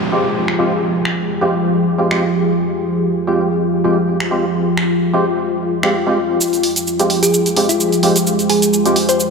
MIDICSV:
0, 0, Header, 1, 7, 480
1, 0, Start_track
1, 0, Key_signature, -4, "minor"
1, 0, Tempo, 465116
1, 847, Time_signature, 4, 2, 24, 8
1, 9600, End_track
2, 0, Start_track
2, 0, Title_t, "Ambient pad"
2, 0, Program_c, 0, 92
2, 0, Note_on_c, 0, 56, 79
2, 0, Note_on_c, 0, 65, 67
2, 0, Note_on_c, 0, 72, 67
2, 0, Note_on_c, 0, 79, 84
2, 6607, Note_off_c, 0, 56, 0
2, 6607, Note_off_c, 0, 79, 0
2, 6608, Note_off_c, 0, 72, 0
2, 6935, Note_on_c, 0, 56, 72
2, 7250, Note_on_c, 0, 72, 72
2, 7633, Note_on_c, 0, 79, 72
2, 9600, Note_off_c, 0, 56, 0
2, 9600, Note_off_c, 0, 65, 0
2, 9600, Note_off_c, 0, 72, 0
2, 9600, Note_off_c, 0, 79, 0
2, 9600, End_track
3, 0, Start_track
3, 0, Title_t, "Synth pluck"
3, 0, Program_c, 1, 84
3, 7458, Note_on_c, 1, 68, 93
3, 7666, Note_off_c, 1, 68, 0
3, 7938, Note_on_c, 1, 65, 84
3, 8146, Note_off_c, 1, 65, 0
3, 8768, Note_on_c, 1, 68, 94
3, 8981, Note_off_c, 1, 68, 0
3, 9380, Note_on_c, 1, 72, 94
3, 9600, Note_off_c, 1, 72, 0
3, 9600, End_track
4, 0, Start_track
4, 0, Title_t, "Analog synth pad"
4, 0, Program_c, 2, 89
4, 0, Note_on_c, 2, 53, 78
4, 0, Note_on_c, 2, 65, 69
4, 0, Note_on_c, 2, 67, 70
4, 0, Note_on_c, 2, 68, 83
4, 6566, Note_off_c, 2, 53, 0
4, 6566, Note_off_c, 2, 65, 0
4, 6566, Note_off_c, 2, 67, 0
4, 6566, Note_off_c, 2, 68, 0
4, 6607, Note_on_c, 2, 67, 70
4, 6607, Note_on_c, 2, 68, 88
4, 6608, Note_on_c, 2, 53, 78
4, 6608, Note_on_c, 2, 65, 71
4, 9600, Note_off_c, 2, 53, 0
4, 9600, Note_off_c, 2, 65, 0
4, 9600, Note_off_c, 2, 67, 0
4, 9600, Note_off_c, 2, 68, 0
4, 9600, End_track
5, 0, Start_track
5, 0, Title_t, "Synth stab"
5, 0, Program_c, 3, 62
5, 127, Note_on_c, 3, 56, 77
5, 127, Note_on_c, 3, 60, 72
5, 127, Note_on_c, 3, 65, 71
5, 127, Note_on_c, 3, 67, 88
5, 269, Note_off_c, 3, 56, 0
5, 269, Note_off_c, 3, 65, 0
5, 270, Note_off_c, 3, 60, 0
5, 270, Note_off_c, 3, 67, 0
5, 607, Note_on_c, 3, 56, 75
5, 607, Note_on_c, 3, 60, 72
5, 607, Note_on_c, 3, 65, 72
5, 607, Note_on_c, 3, 67, 86
5, 750, Note_off_c, 3, 56, 0
5, 750, Note_off_c, 3, 60, 0
5, 750, Note_off_c, 3, 65, 0
5, 750, Note_off_c, 3, 67, 0
5, 1458, Note_on_c, 3, 56, 94
5, 1458, Note_on_c, 3, 60, 85
5, 1458, Note_on_c, 3, 67, 107
5, 1459, Note_on_c, 3, 65, 85
5, 1580, Note_off_c, 3, 56, 0
5, 1580, Note_off_c, 3, 60, 0
5, 1580, Note_off_c, 3, 67, 0
5, 1581, Note_off_c, 3, 65, 0
5, 2047, Note_on_c, 3, 56, 70
5, 2047, Note_on_c, 3, 60, 66
5, 2047, Note_on_c, 3, 65, 63
5, 2047, Note_on_c, 3, 67, 79
5, 2159, Note_off_c, 3, 56, 0
5, 2159, Note_off_c, 3, 60, 0
5, 2159, Note_off_c, 3, 65, 0
5, 2159, Note_off_c, 3, 67, 0
5, 2178, Note_on_c, 3, 56, 79
5, 2178, Note_on_c, 3, 60, 70
5, 2178, Note_on_c, 3, 67, 88
5, 2179, Note_on_c, 3, 65, 70
5, 2300, Note_off_c, 3, 56, 0
5, 2300, Note_off_c, 3, 60, 0
5, 2300, Note_off_c, 3, 67, 0
5, 2301, Note_off_c, 3, 65, 0
5, 3378, Note_on_c, 3, 56, 72
5, 3378, Note_on_c, 3, 60, 68
5, 3378, Note_on_c, 3, 65, 68
5, 3378, Note_on_c, 3, 67, 81
5, 3587, Note_off_c, 3, 56, 0
5, 3587, Note_off_c, 3, 60, 0
5, 3587, Note_off_c, 3, 65, 0
5, 3587, Note_off_c, 3, 67, 0
5, 3967, Note_on_c, 3, 56, 77
5, 3967, Note_on_c, 3, 60, 70
5, 3967, Note_on_c, 3, 65, 73
5, 3967, Note_on_c, 3, 67, 87
5, 4109, Note_off_c, 3, 56, 0
5, 4109, Note_off_c, 3, 67, 0
5, 4110, Note_off_c, 3, 60, 0
5, 4110, Note_off_c, 3, 65, 0
5, 4447, Note_on_c, 3, 56, 75
5, 4447, Note_on_c, 3, 60, 74
5, 4448, Note_on_c, 3, 65, 71
5, 4448, Note_on_c, 3, 67, 87
5, 4590, Note_off_c, 3, 56, 0
5, 4590, Note_off_c, 3, 60, 0
5, 4590, Note_off_c, 3, 65, 0
5, 4590, Note_off_c, 3, 67, 0
5, 5299, Note_on_c, 3, 56, 94
5, 5299, Note_on_c, 3, 60, 85
5, 5299, Note_on_c, 3, 65, 87
5, 5300, Note_on_c, 3, 67, 99
5, 5421, Note_off_c, 3, 56, 0
5, 5421, Note_off_c, 3, 60, 0
5, 5421, Note_off_c, 3, 65, 0
5, 5421, Note_off_c, 3, 67, 0
5, 6019, Note_on_c, 3, 56, 87
5, 6019, Note_on_c, 3, 60, 79
5, 6019, Note_on_c, 3, 65, 77
5, 6019, Note_on_c, 3, 67, 97
5, 6141, Note_off_c, 3, 56, 0
5, 6141, Note_off_c, 3, 60, 0
5, 6141, Note_off_c, 3, 65, 0
5, 6141, Note_off_c, 3, 67, 0
5, 6259, Note_on_c, 3, 56, 88
5, 6259, Note_on_c, 3, 60, 84
5, 6259, Note_on_c, 3, 65, 84
5, 6259, Note_on_c, 3, 67, 97
5, 6381, Note_off_c, 3, 56, 0
5, 6381, Note_off_c, 3, 60, 0
5, 6381, Note_off_c, 3, 65, 0
5, 6381, Note_off_c, 3, 67, 0
5, 7219, Note_on_c, 3, 56, 73
5, 7219, Note_on_c, 3, 60, 66
5, 7219, Note_on_c, 3, 65, 68
5, 7219, Note_on_c, 3, 67, 82
5, 7427, Note_off_c, 3, 56, 0
5, 7427, Note_off_c, 3, 60, 0
5, 7427, Note_off_c, 3, 65, 0
5, 7427, Note_off_c, 3, 67, 0
5, 7807, Note_on_c, 3, 56, 83
5, 7807, Note_on_c, 3, 60, 77
5, 7807, Note_on_c, 3, 65, 74
5, 7807, Note_on_c, 3, 67, 90
5, 7950, Note_off_c, 3, 56, 0
5, 7950, Note_off_c, 3, 60, 0
5, 7950, Note_off_c, 3, 65, 0
5, 7950, Note_off_c, 3, 67, 0
5, 8288, Note_on_c, 3, 56, 78
5, 8288, Note_on_c, 3, 60, 74
5, 8288, Note_on_c, 3, 65, 73
5, 8288, Note_on_c, 3, 67, 85
5, 8430, Note_off_c, 3, 56, 0
5, 8430, Note_off_c, 3, 60, 0
5, 8430, Note_off_c, 3, 65, 0
5, 8430, Note_off_c, 3, 67, 0
5, 9139, Note_on_c, 3, 56, 94
5, 9139, Note_on_c, 3, 60, 91
5, 9139, Note_on_c, 3, 65, 87
5, 9139, Note_on_c, 3, 67, 109
5, 9261, Note_off_c, 3, 56, 0
5, 9261, Note_off_c, 3, 60, 0
5, 9261, Note_off_c, 3, 65, 0
5, 9261, Note_off_c, 3, 67, 0
5, 9600, End_track
6, 0, Start_track
6, 0, Title_t, "Downlifter"
6, 0, Program_c, 4, 103
6, 0, Note_on_c, 4, 60, 64
6, 2767, Note_off_c, 4, 60, 0
6, 9600, End_track
7, 0, Start_track
7, 0, Title_t, "Drums"
7, 498, Note_on_c, 9, 26, 54
7, 601, Note_off_c, 9, 26, 0
7, 1087, Note_on_c, 9, 26, 56
7, 1190, Note_off_c, 9, 26, 0
7, 2178, Note_on_c, 9, 26, 75
7, 2281, Note_off_c, 9, 26, 0
7, 4338, Note_on_c, 9, 26, 61
7, 4442, Note_off_c, 9, 26, 0
7, 4928, Note_on_c, 9, 26, 57
7, 5031, Note_off_c, 9, 26, 0
7, 6019, Note_on_c, 9, 26, 83
7, 6122, Note_off_c, 9, 26, 0
7, 6613, Note_on_c, 9, 69, 53
7, 6716, Note_off_c, 9, 69, 0
7, 6739, Note_on_c, 9, 42, 36
7, 6744, Note_on_c, 9, 69, 32
7, 6842, Note_off_c, 9, 42, 0
7, 6847, Note_off_c, 9, 69, 0
7, 6847, Note_on_c, 9, 46, 100
7, 6950, Note_off_c, 9, 46, 0
7, 6978, Note_on_c, 9, 42, 65
7, 6983, Note_on_c, 9, 69, 63
7, 7081, Note_off_c, 9, 42, 0
7, 7087, Note_off_c, 9, 69, 0
7, 7093, Note_on_c, 9, 69, 51
7, 7196, Note_off_c, 9, 69, 0
7, 7219, Note_on_c, 9, 42, 54
7, 7224, Note_on_c, 9, 69, 31
7, 7322, Note_off_c, 9, 42, 0
7, 7327, Note_off_c, 9, 69, 0
7, 7327, Note_on_c, 9, 46, 85
7, 7430, Note_off_c, 9, 46, 0
7, 7458, Note_on_c, 9, 42, 68
7, 7464, Note_on_c, 9, 69, 63
7, 7561, Note_off_c, 9, 42, 0
7, 7567, Note_off_c, 9, 69, 0
7, 7573, Note_on_c, 9, 69, 54
7, 7676, Note_off_c, 9, 69, 0
7, 7699, Note_on_c, 9, 42, 54
7, 7704, Note_on_c, 9, 69, 32
7, 7802, Note_off_c, 9, 42, 0
7, 7807, Note_off_c, 9, 69, 0
7, 7807, Note_on_c, 9, 46, 105
7, 7910, Note_off_c, 9, 46, 0
7, 7938, Note_on_c, 9, 42, 67
7, 7944, Note_on_c, 9, 69, 64
7, 8041, Note_off_c, 9, 42, 0
7, 8047, Note_off_c, 9, 69, 0
7, 8052, Note_on_c, 9, 69, 56
7, 8156, Note_off_c, 9, 69, 0
7, 8178, Note_on_c, 9, 42, 35
7, 8184, Note_on_c, 9, 69, 31
7, 8281, Note_off_c, 9, 42, 0
7, 8286, Note_on_c, 9, 46, 92
7, 8287, Note_off_c, 9, 69, 0
7, 8390, Note_off_c, 9, 46, 0
7, 8418, Note_on_c, 9, 42, 65
7, 8424, Note_on_c, 9, 69, 61
7, 8521, Note_off_c, 9, 42, 0
7, 8527, Note_off_c, 9, 69, 0
7, 8532, Note_on_c, 9, 69, 51
7, 8636, Note_off_c, 9, 69, 0
7, 8659, Note_on_c, 9, 42, 35
7, 8664, Note_on_c, 9, 69, 31
7, 8762, Note_off_c, 9, 42, 0
7, 8767, Note_off_c, 9, 69, 0
7, 8767, Note_on_c, 9, 46, 102
7, 8870, Note_off_c, 9, 46, 0
7, 8899, Note_on_c, 9, 42, 65
7, 8904, Note_on_c, 9, 69, 61
7, 9002, Note_off_c, 9, 42, 0
7, 9007, Note_off_c, 9, 69, 0
7, 9013, Note_on_c, 9, 69, 51
7, 9116, Note_off_c, 9, 69, 0
7, 9138, Note_on_c, 9, 42, 52
7, 9144, Note_on_c, 9, 69, 31
7, 9242, Note_off_c, 9, 42, 0
7, 9247, Note_off_c, 9, 69, 0
7, 9247, Note_on_c, 9, 46, 90
7, 9350, Note_off_c, 9, 46, 0
7, 9378, Note_on_c, 9, 42, 65
7, 9384, Note_on_c, 9, 69, 64
7, 9481, Note_off_c, 9, 42, 0
7, 9487, Note_off_c, 9, 69, 0
7, 9492, Note_on_c, 9, 69, 52
7, 9596, Note_off_c, 9, 69, 0
7, 9600, End_track
0, 0, End_of_file